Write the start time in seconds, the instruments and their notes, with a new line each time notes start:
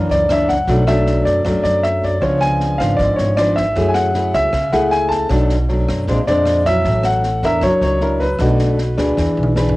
Already playing: nylon-string guitar F#2 E3 A#3 D4, grand piano E5
0.09 upright bass C#2, grand piano D5, snare
0.29 nylon-string guitar E3 A#3 D4, grand piano E5, cross-stick, snare
0.48 grand piano F#5, kick, snare
0.67 upright bass B1, nylon-string guitar B2 F#3 A3 D4, kick, snare
0.87 nylon-string guitar F#3 A3 D4, grand piano E5, cross-stick, snare
1.06 snare
1.25 upright bass F#2, grand piano D5, kick, snare
1.44 upright bass F#2, nylon-string guitar F#2 F#3 A3 D4, kick, cross-stick, snare
1.63 upright bass F#2, grand piano D5, snare
1.83 grand piano E5, snare
2.03 grand piano D5, kick, snare
2.21 upright bass C#2, nylon-string guitar C#3 F3 B3 D4, grand piano C#5, kick, cross-stick, snare
2.41 grand piano G#5, snare
2.60 snare
2.78 upright bass G#1, nylon-string guitar F3 B3 D4, grand piano F5, kick, cross-stick, snare
2.97 upright bass G#1, nylon-string guitar G#2, grand piano D5, kick, snare
3.16 upright bass G#1, grand piano C#5, snare
3.37 nylon-string guitar F3 B3 D4, grand piano D5, cross-stick, snare
3.56 grand piano E5, kick, snare
3.75 upright bass F#2, nylon-string guitar F#3 A3 E4 G#4, kick, snare
3.89 grand piano G#5
3.94 grand piano F#5, cross-stick, snare
4.14 nylon-string guitar A3 E4 G#4, snare
4.33 upright bass C#2, grand piano E5, kick, snare
4.53 upright bass C#2, nylon-string guitar C#3, kick, cross-stick, snare
4.72 upright bass C#2, nylon-string guitar A3 E4 G#4, grand piano F#5, snare
4.91 grand piano G#5, snare
5.09 grand piano A5, kick, snare
5.30 upright bass B1, nylon-string guitar B2 F#3 A3 D4, kick, cross-stick, snare
5.49 snare
5.69 nylon-string guitar F#3 A3 D4, snare
5.88 upright bass F#2, kick, cross-stick, snare
6.07 upright bass A#1, nylon-string guitar A#2 G#3 C4 D4, kick, snare
6.27 upright bass F2, nylon-string guitar G#3 C4 D4, grand piano D5, snare
6.46 cross-stick, snare
6.65 nylon-string guitar F#3 C#4 E4, grand piano E5, kick, snare
6.85 upright bass A1, nylon-string guitar A2, kick, snare
7.03 grand piano F#5, cross-stick, snare
7.23 snare
7.43 upright bass E2, nylon-string guitar D4 E4 A#4, grand piano E5, kick, snare
7.62 upright bass F#1, nylon-string guitar F#3, grand piano C#5, kick, cross-stick, snare
7.81 upright bass C#2, grand piano C#5, snare
8.01 nylon-string guitar D4 E4 A#4, snare
8.20 grand piano B4, kick, snare
8.39 upright bass B1, nylon-string guitar B2 A3 D4 F#4, kick, cross-stick, snare
8.59 snare
8.78 snare
8.98 upright bass D2, nylon-string guitar D4 G#4 B4, kick, cross-stick, snare
9.17 upright bass E2, nylon-string guitar E3, kick, snare
9.37 upright bass B1
9.43 mid tom
9.56 nylon-string guitar D4 G#4 B4, snare
9.69 floor tom